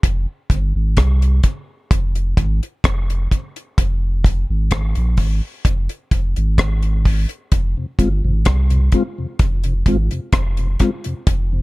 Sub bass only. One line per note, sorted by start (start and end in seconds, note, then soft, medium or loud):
0.04 0.26 F1 loud
0.51 0.73 G1 loud
0.75 0.96 G#1 medium
0.98 1.41 C2 medium
1.91 2.34 F1 loud
2.38 2.60 G#1 loud
2.85 3.28 F1 loud
3.78 4.45 F1 loud
4.50 4.70 G#1 medium
4.72 4.94 G#1 loud
4.97 5.17 A#1 medium
5.18 5.41 G#1 loud
5.65 5.88 F1 loud
6.12 6.35 F1 loud
6.37 6.57 G#1 medium
6.59 7.26 G#1 loud
7.52 7.75 F1 loud
7.99 8.22 G1 medium
8.24 8.44 G#1 medium
8.47 8.90 C2 loud
9.40 9.83 F1 loud
9.87 10.09 G#1 medium
10.33 10.77 F1 loud
11.27 11.62 F1 loud